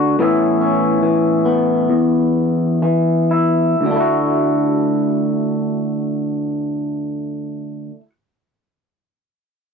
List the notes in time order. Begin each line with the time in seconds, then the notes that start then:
Already playing: D2 D3 A3 E4 F#4
0.19 A2 E3 B3 C#4 E4
0.61 C#4
1.03 E3
1.45 B3
1.90 E2
2.82 E3
3.31 E4
3.81 D2
3.86 D3
3.91 A3
3.96 E4
4.00 F#4